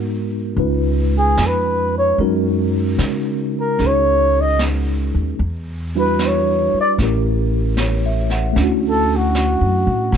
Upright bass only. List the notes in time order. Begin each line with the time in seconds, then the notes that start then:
Already playing: G#2
0.57 C#2
1.38 F2
2.18 F#2
2.98 C#3
3.79 C#2
5.14 D#2
5.39 E2
6.74 muted upright bass stroke
6.98 A1
8.56 D2
9.61 F#2
9.87 A2
10.12 A1